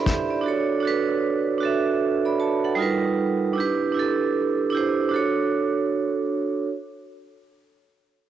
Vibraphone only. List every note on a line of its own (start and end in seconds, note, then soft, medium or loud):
0.00 0.41 D4 medium
0.00 0.46 E4 medium
0.00 0.06 G4 medium
0.00 0.46 A4 medium
0.00 0.30 D5 medium
0.00 0.06 E5 medium
0.00 0.46 B5 medium
0.00 0.46 C6 medium
0.06 0.29 G4 medium
0.06 0.29 E5 medium
0.30 0.67 D5 medium
0.41 0.77 D4 medium
0.41 0.78 F#4 medium
0.46 0.79 A4 medium
0.46 0.81 C#5 medium
0.80 1.50 D4 medium
0.80 1.51 F#4 medium
0.85 1.53 A4 medium
0.85 1.54 B4 medium
1.58 2.77 D4 medium
1.58 2.78 F#4 medium
1.63 2.01 A4 medium
1.63 2.02 E5 medium
2.25 2.39 D5 medium
2.25 2.39 B5 medium
2.40 2.63 C#5 medium
2.40 2.63 A5 medium
2.64 3.01 A4 medium
2.64 3.01 F#5 medium
2.75 3.45 G3 medium
2.75 3.46 D#4 medium
2.75 3.47 F4 medium
2.80 3.48 A#4 medium
2.80 3.48 B4 loud
3.53 3.89 D4 medium
3.53 3.90 E4 medium
3.58 3.91 G4 medium
3.58 3.92 B4 medium
3.92 4.62 D4 medium
3.92 4.63 E4 medium
3.97 4.64 G4 medium
3.97 4.65 A4 medium
4.70 5.08 D4 medium
4.70 5.12 E4 medium
4.75 5.13 G4 medium
4.75 5.14 C5 medium
5.09 6.43 D4 medium
5.09 6.45 F#4 medium
5.14 6.46 A4 medium
5.14 6.47 C#5 medium